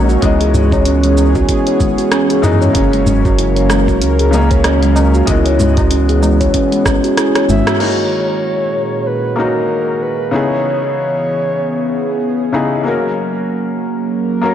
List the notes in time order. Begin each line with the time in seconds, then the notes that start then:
Already playing: A#1 D#3 F#3 A#3 C#4 D#4 F#4 A#4 C#5
0.09 F#4, cabasa
0.21 C#2 E3 G#3 B3 C#4 D#5, kick, closed hi-hat, cabasa
0.41 G#4, closed hi-hat, cabasa
0.54 G#3, tabla tin, tabla ge, cabasa
0.64 B3
0.72 C#5, kick, tabla na, cabasa
0.78 G#4
0.85 C#4, closed hi-hat, cabasa
1.03 G#3, closed hi-hat, cabasa
1.18 C#4, tabla na, cabasa
1.35 F#4, kick, tabla tin, cabasa
1.49 E4, kick, closed hi-hat, cabasa
1.67 C#5, closed hi-hat, cabasa
1.80 G#1 G#3, kick, cabasa
1.98 F#4, closed hi-hat, cabasa
2.12 C#4, cross-stick, closed hi-hat, cabasa
2.30 G#4, closed hi-hat, cabasa
2.42 F#2 E3 G#3 B3 D#4, tabla ge, cabasa
2.61 C#5, cabasa
2.73 F#1 C#3 F#3 A#3 C#4, kick, closed hi-hat, cabasa
2.77 C#4
2.93 G#3, closed hi-hat, cabasa
3.06 A#3 C#4, tabla tin, tabla ge, cabasa
3.20 A#4
3.25 F#4, kick, tabla na, cabasa
3.38 E4, closed hi-hat, cabasa
3.56 C#5, closed hi-hat, cabasa
3.70 G#3, cross-stick, tabla na, cabasa
3.88 F#4, kick, tabla tin, cabasa
4.01 C#2 C#4, closed hi-hat, cabasa
4.19 G#4, closed hi-hat, cabasa
4.31 C#3 F#3 G#3 A#3, tabla na, cabasa
4.35 C#4
4.51 C#5, kick, closed hi-hat, cabasa
4.64 C#4, cross-stick, closed hi-hat, tabla na, cabasa
4.83 G#3, closed hi-hat, tabla tin, cabasa
4.96 C#4, tabla na, cabasa
5.14 F#4, cabasa
5.25 C#2 E3 G#3 B3, kick, closed hi-hat, cabasa
5.30 D#5
5.46 C#5, closed hi-hat, cabasa
5.59 G#3, tabla tin, tabla ge, cabasa
5.77 F#4, kick, closed hi-hat, tabla na, cabasa
5.82 B3
5.91 C#4, closed hi-hat, cabasa
6.09 G#4, closed hi-hat, cabasa
6.22 G#3, tabla na, cabasa
6.40 G#4 C#5, kick, closed hi-hat, cabasa
6.54 C#4, kick, closed hi-hat, cabasa
6.72 G#3, closed hi-hat, cabasa
6.86 G#1 C#4, kick, cross-stick, tabla na, cabasa
7.04 F#4, closed hi-hat, cabasa
7.17 E4, cross-stick, closed hi-hat, cabasa
7.35 C#5, cross-stick, closed hi-hat, cabasa
7.49 G#1 G#3 E5, tabla tin, tabla ge, cabasa
7.67 F#4, cross-stick, closed hi-hat, cabasa
7.78 D#3 A#3 C#4 D#4 G#4 C#5, crash
7.83 F#4
8.36 A#2
8.97 F#4
9.07 B4
9.36 A#3 C#4 D#4 A#4
9.40 F#4
10.02 B4
10.31 C#3 E3 B3 D#4 E4 C#5
10.35 G#4
10.89 B3
10.96 C#5
11.48 G#4
12.53 C#3 B3 D#4 E4 G#4
12.84 F#3 A#3 C#4 F#4
12.88 A#4
13.04 A#3
13.30 C#4
13.60 C#5
14.02 A#4
14.41 A#3 C#4 F#4 A#4